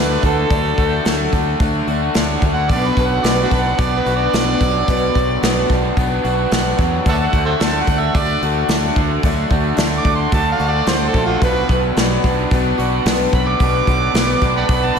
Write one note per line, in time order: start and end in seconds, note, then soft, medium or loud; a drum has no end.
0.00 0.16 D2 medium
0.00 0.24 D3 medium
0.00 0.24 F#3 medium
0.00 0.24 A3 medium
0.00 0.77 A3 medium
0.00 0.23 D4 medium
0.00 0.22 F#4 medium
0.00 1.87 F#4 medium
0.00 0.23 B4 loud
0.23 0.44 D2 medium
0.23 0.50 D3 medium
0.23 0.51 A3 soft
0.23 0.51 D4 soft
0.23 0.51 F#4 soft
0.23 1.31 A4 loud
0.23 kick medium
0.23 open hi-hat medium
0.50 0.71 D2 medium
0.50 0.78 D3 medium
0.50 0.78 F#3 medium
0.50 0.79 A3 medium
0.50 0.79 D4 medium
0.50 0.78 F#4 medium
0.50 kick loud
0.50 open hi-hat medium
0.78 0.99 D2 medium
0.78 1.06 A3 soft
0.78 1.06 D4 soft
0.78 1.06 F#4 medium
0.78 kick medium
0.78 open hi-hat soft
1.05 1.26 D2 medium
1.05 1.33 D3 medium
1.05 1.34 F#3 medium
1.05 1.34 A3 medium
1.05 1.34 D4 medium
1.05 1.32 F#4 medium
1.05 snare loud
1.05 open hi-hat medium
1.32 1.53 D2 medium
1.32 1.60 A3 medium
1.32 1.61 D4 medium
1.32 1.61 F#4 medium
1.32 kick medium
1.32 open hi-hat medium
1.60 1.80 D2 medium
1.60 1.88 F#3 medium
1.60 1.88 A3 medium
1.60 1.88 D4 medium
1.60 1.87 F#4 medium
1.60 kick loud
1.60 open hi-hat medium
1.87 2.08 D2 medium
1.87 2.16 A3 soft
1.87 2.16 D4 medium
1.87 2.15 F#4 medium
1.87 open hi-hat soft
2.14 2.36 D2 medium
2.14 2.42 D3 medium
2.14 2.43 F#3 medium
2.14 2.43 A3 medium
2.14 2.44 D4 medium
2.14 2.42 F#4 loud
2.14 snare loud
2.14 open hi-hat medium
2.42 2.71 D2 medium
2.42 2.70 D3 medium
2.42 2.70 A3 soft
2.42 2.71 D4 soft
2.42 2.70 F#4 medium
2.42 kick medium
2.42 open hi-hat medium
2.53 2.71 F#5 medium
2.69 2.90 B1 medium
2.69 2.97 B2 medium
2.69 2.98 F#3 medium
2.69 2.98 B3 medium
2.69 2.97 D4 medium
2.69 2.96 F#4 medium
2.69 2.90 D5 medium
2.69 kick loud
2.69 open hi-hat medium
2.88 3.08 B4 medium
2.97 3.17 B1 medium
2.97 4.61 F#3 medium
2.97 3.24 B3 soft
2.97 3.25 D4 medium
2.97 3.24 F#4 soft
2.97 kick medium
2.97 open hi-hat medium
3.06 3.26 F#5 medium
3.24 3.44 B1 medium
3.24 3.52 B2 medium
3.24 3.52 F#3 medium
3.24 3.52 B3 medium
3.24 3.51 D4 medium
3.24 3.49 F#4 medium
3.24 3.42 D5 medium
3.24 snare loud
3.24 open hi-hat medium
3.43 3.50 D4 medium
3.43 3.49 F#4 medium
3.43 3.62 B4 medium
3.51 3.72 B1 medium
3.51 3.78 B3 soft
3.51 3.79 D4 soft
3.51 3.79 F#4 soft
3.51 kick medium
3.51 open hi-hat medium
3.61 3.81 F#5 loud
3.78 3.99 B1 medium
3.78 4.06 F#3 medium
3.78 4.07 B3 medium
3.78 4.07 D4 medium
3.78 4.04 F#4 medium
3.78 4.00 D5 loud
3.78 kick loud
3.78 open hi-hat medium
3.98 4.15 B4 medium
4.05 4.26 B1 medium
4.05 4.33 B3 soft
4.05 4.34 D4 soft
4.05 4.33 F#4 soft
4.05 open hi-hat medium
4.16 5.75 D5 loud
4.33 4.54 B1 medium
4.33 4.61 B2 medium
4.33 4.61 F#3 medium
4.33 4.61 B3 medium
4.33 4.61 D4 medium
4.33 4.59 F#4 medium
4.33 snare loud
4.33 open hi-hat medium
4.61 4.81 B1 medium
4.61 5.15 F#3 medium
4.61 4.89 B3 soft
4.61 4.89 D4 soft
4.61 4.88 F#4 medium
4.61 kick medium
4.61 open hi-hat medium
4.88 5.09 B1 medium
4.88 5.16 B2 medium
4.88 5.16 F#3 medium
4.88 5.16 B3 medium
4.88 5.15 D4 medium
4.88 5.14 F#4 medium
4.88 kick loud
4.88 open hi-hat medium
5.15 5.36 B1 medium
5.15 6.79 F#3 medium
5.15 5.43 B3 soft
5.15 5.43 D4 medium
5.15 5.43 F#4 medium
5.15 kick medium
5.15 open hi-hat medium
5.43 5.63 B1 medium
5.43 5.70 B2 medium
5.43 5.70 F#3 medium
5.43 5.71 B3 medium
5.43 5.71 D4 medium
5.43 5.70 F#4 medium
5.43 snare loud
5.43 open hi-hat medium
5.69 5.90 B1 medium
5.69 5.98 D4 soft
5.69 5.98 F#4 medium
5.69 kick medium
5.69 open hi-hat medium
5.74 5.97 B3 soft
5.97 6.17 B1 medium
5.97 6.25 F#3 medium
5.97 6.25 B3 medium
5.97 6.25 D4 medium
5.97 6.23 F#4 medium
5.97 kick loud
5.97 open hi-hat medium
6.24 6.45 B1 medium
6.24 6.52 B3 soft
6.24 6.53 D4 medium
6.24 6.52 F#4 medium
6.24 open hi-hat soft
6.51 6.72 B1 medium
6.51 6.79 B2 medium
6.51 6.80 F#3 medium
6.51 6.80 B3 medium
6.51 6.80 D4 medium
6.51 6.78 F#4 loud
6.51 snare loud
6.51 open hi-hat medium
6.78 6.99 E2 medium
6.78 7.06 F#3 medium
6.78 7.08 B3 medium
6.78 7.07 D4 soft
6.78 7.06 F#4 medium
6.78 kick medium
6.78 open hi-hat medium
7.06 7.26 D2 medium
7.06 7.33 D3 medium
7.06 7.34 F#3 medium
7.06 7.34 A3 medium
7.06 9.22 D4 medium
7.06 7.34 D4 medium
7.06 9.22 F#4 medium
7.06 7.33 F#4 medium
7.06 9.22 A4 medium
7.06 9.22 D5 medium
7.06 7.15 E5 medium
7.06 7.16 F#5 medium
7.06 7.27 A5 loud
7.06 kick loud
7.06 open hi-hat medium
7.26 7.43 F#5 loud
7.33 7.53 D2 medium
7.33 7.61 A3 soft
7.33 7.62 D4 soft
7.33 7.61 F#4 medium
7.33 kick medium
7.33 open hi-hat medium
7.46 7.53 A4 medium
7.46 7.55 C5 medium
7.46 7.65 E5 medium
7.60 7.81 D2 medium
7.60 7.88 D3 medium
7.60 7.89 F#3 medium
7.60 7.89 A3 medium
7.60 7.89 D4 medium
7.60 7.88 F#4 medium
7.60 7.80 A5 loud
7.60 snare loud
7.60 open hi-hat medium
7.81 8.01 F#5 medium
7.87 8.08 D2 medium
7.87 8.16 D4 medium
7.87 8.16 F#4 soft
7.87 kick medium
7.87 open hi-hat medium
7.92 8.15 A3 soft
8.00 8.19 E5 medium
8.14 8.35 D2 medium
8.14 8.43 F#3 medium
8.14 8.43 A3 medium
8.14 8.43 D4 medium
8.14 8.43 D5 loud
8.14 kick loud
8.14 open hi-hat medium
8.19 8.42 F#4 medium
8.42 8.62 D2 medium
8.42 8.71 A3 soft
8.42 8.71 D4 soft
8.42 8.70 F#4 medium
8.42 open hi-hat medium
8.69 8.89 D2 medium
8.69 8.97 D3 medium
8.69 8.98 F#3 medium
8.69 8.98 A3 medium
8.69 snare loud
8.69 open hi-hat medium
8.73 8.97 D4 medium
8.73 8.95 F#4 loud
8.96 9.17 D2 medium
8.96 9.23 D3 medium
8.96 9.24 A3 soft
8.96 9.25 D4 medium
8.96 9.24 F#4 medium
8.96 kick medium
8.96 open hi-hat medium
9.23 9.44 D2 medium
9.23 9.51 D3 medium
9.23 9.52 F#3 medium
9.23 9.52 A3 medium
9.23 11.40 D4 medium
9.23 9.50 D4 medium
9.23 11.40 F#4 medium
9.23 9.49 F#4 medium
9.23 11.39 A4 medium
9.23 kick loud
9.23 open hi-hat medium
9.50 9.71 D2 medium
9.50 9.77 A3 soft
9.50 9.78 D4 medium
9.50 9.78 F#4 medium
9.50 kick medium
9.50 open hi-hat medium
9.77 9.98 D2 medium
9.77 10.05 D3 loud
9.77 10.06 F#3 medium
9.77 10.06 A3 medium
9.77 10.05 D4 loud
9.77 10.03 F#4 medium
9.77 snare loud
9.77 open hi-hat medium
9.98 10.15 D6 loud
10.04 10.25 D2 medium
10.04 10.32 A3 soft
10.04 10.32 D4 soft
10.04 10.32 F#4 soft
10.04 kick medium
10.04 open hi-hat medium
10.15 10.33 C6 medium
10.32 10.53 D2 medium
10.32 10.60 F#3 medium
10.32 10.60 A3 medium
10.32 10.60 D4 medium
10.32 10.57 F#4 medium
10.32 10.51 A5 loud
10.32 kick loud
10.32 open hi-hat medium
10.52 10.72 F5 medium
10.59 10.80 D2 medium
10.59 10.86 A3 soft
10.59 10.87 D4 soft
10.59 10.87 F#4 medium
10.59 open hi-hat medium
10.70 10.88 D5 loud
10.86 11.07 D2 medium
10.86 11.14 D3 medium
10.86 11.15 F#3 medium
10.86 11.15 A3 medium
10.86 11.14 D4 medium
10.86 11.12 F#4 medium
10.86 11.06 C5 medium
10.86 snare loud
10.86 open hi-hat medium
11.08 11.25 A4 medium
11.13 11.35 A#1 medium
11.13 11.42 D3 medium
11.13 11.43 A3 soft
11.13 11.43 D4 soft
11.13 11.42 F#4 medium
11.13 kick medium
11.13 open hi-hat medium
11.26 11.43 F4 medium
11.41 11.62 B1 medium
11.41 11.69 B2 medium
11.41 11.70 F#3 medium
11.41 11.70 B3 medium
11.41 13.58 D4 medium
11.41 11.70 D4 medium
11.41 13.58 F#4 medium
11.41 11.68 F#4 medium
11.41 13.58 B4 medium
11.41 11.69 B4 loud
11.41 13.58 D5 medium
11.41 kick loud
11.41 open hi-hat medium
11.69 11.90 B1 medium
11.69 13.33 F#3 medium
11.69 11.97 B3 soft
11.69 11.97 D4 medium
11.69 11.97 F#4 medium
11.69 kick medium
11.69 open hi-hat medium
11.96 12.17 B1 medium
11.96 12.24 B2 medium
11.96 12.24 F#3 medium
11.96 12.25 B3 medium
11.96 12.24 D4 loud
11.96 12.23 F#4 loud
11.96 snare loud
11.96 open hi-hat medium
12.24 12.44 B1 medium
12.24 12.51 B3 soft
12.24 12.52 D4 medium
12.24 12.51 F#4 medium
12.24 kick medium
12.24 open hi-hat medium
12.51 12.72 B1 medium
12.51 12.78 F#3 medium
12.51 12.79 B3 medium
12.51 12.78 D4 medium
12.51 12.77 F#4 medium
12.51 kick loud
12.51 open hi-hat medium
12.78 12.99 B1 medium
12.78 13.06 B3 soft
12.78 13.06 D4 medium
12.78 13.05 F#4 medium
12.78 open hi-hat medium
13.05 13.26 B1 medium
13.05 13.33 B2 loud
13.05 13.33 F#3 medium
13.05 13.34 B3 medium
13.05 13.33 D4 loud
13.05 13.31 F#4 medium
13.05 snare loud
13.05 open hi-hat medium
13.33 13.53 B1 medium
13.33 13.86 F#3 medium
13.33 13.60 B3 soft
13.33 13.61 D4 soft
13.33 13.60 F#4 medium
13.33 13.49 B5 loud
13.33 kick medium
13.33 open hi-hat medium
13.48 14.53 D6 loud
13.60 13.80 B1 medium
13.60 13.88 B2 medium
13.60 13.88 F#3 medium
13.60 13.88 B3 medium
13.60 14.99 D4 medium
13.60 13.88 D4 medium
13.60 14.99 F#4 medium
13.60 13.86 F#4 medium
13.60 14.99 B4 medium
13.60 14.99 D5 medium
13.60 kick loud
13.60 open hi-hat medium
13.87 14.08 B1 medium
13.87 14.99 F#3 medium
13.87 14.15 B3 soft
13.87 14.16 D4 medium
13.87 14.15 F#4 medium
13.87 kick medium
13.87 open hi-hat medium
14.14 14.34 B1 medium
14.14 14.42 B2 medium
14.14 14.43 F#3 medium
14.14 14.43 B3 medium
14.14 14.43 D4 loud
14.14 14.42 F#4 loud
14.14 snare loud
14.14 open hi-hat medium
14.42 14.62 B1 medium
14.42 14.70 D4 soft
14.42 14.70 F#4 soft
14.42 kick medium
14.42 open hi-hat medium
14.46 14.69 B3 soft
14.57 14.66 D5 medium
14.57 14.63 F#5 medium
14.57 14.85 B5 loud
14.69 14.89 B1 medium
14.69 14.96 F#3 medium
14.69 14.97 B3 medium
14.69 14.96 D4 medium
14.69 14.94 F#4 medium
14.69 kick loud
14.69 open hi-hat medium
14.84 14.98 A5 loud
14.96 14.99 F#4 medium